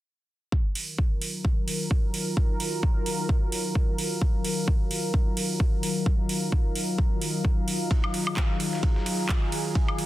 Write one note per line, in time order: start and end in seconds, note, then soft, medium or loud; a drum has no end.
0.52 10.06 D#3 medium
0.52 10.06 F#3 medium
0.52 10.06 D#4 medium
0.52 10.06 F4 medium
0.52 7.89 A#4 medium
0.52 kick loud
0.63 10.06 F#3 medium
0.63 10.06 F5 medium
0.74 10.06 A#5 medium
0.74 open hi-hat medium
0.98 kick loud
1.22 open hi-hat medium
1.45 kick loud
1.68 open hi-hat medium
1.91 kick loud
2.14 open hi-hat medium
2.37 kick loud
2.60 open hi-hat loud
2.83 kick loud
3.06 open hi-hat medium
3.29 kick loud
3.52 open hi-hat loud
3.75 kick loud
3.98 open hi-hat loud
4.22 kick loud
4.45 open hi-hat loud
4.68 kick loud
4.91 open hi-hat medium
5.14 kick loud
5.37 open hi-hat loud
5.60 kick loud
5.83 open hi-hat loud
6.06 kick loud
6.29 open hi-hat loud
6.52 kick loud
6.75 open hi-hat loud
6.99 kick loud
7.22 open hi-hat loud
7.45 kick loud
7.68 open hi-hat loud
7.91 10.06 G#4 medium
7.91 kick loud
7.91 ride medium
8.04 high woodblock medium
8.14 open hi-hat loud
8.14 ride medium
8.27 snare soft
8.27 high woodblock medium
8.37 kick loud
8.37 snare loud
8.37 clap loud
8.37 ride medium
8.60 open hi-hat medium
8.60 ride medium
8.73 snare soft
8.83 kick loud
8.83 ride medium
8.96 snare soft
9.06 open hi-hat loud
9.06 ride medium
9.29 kick loud
9.29 snare loud
9.29 clap loud
9.29 ride medium
9.52 open hi-hat medium
9.52 ride medium
9.75 kick loud
9.75 ride medium
9.88 ride soft
9.88 high woodblock medium
9.98 open hi-hat loud
9.98 ride medium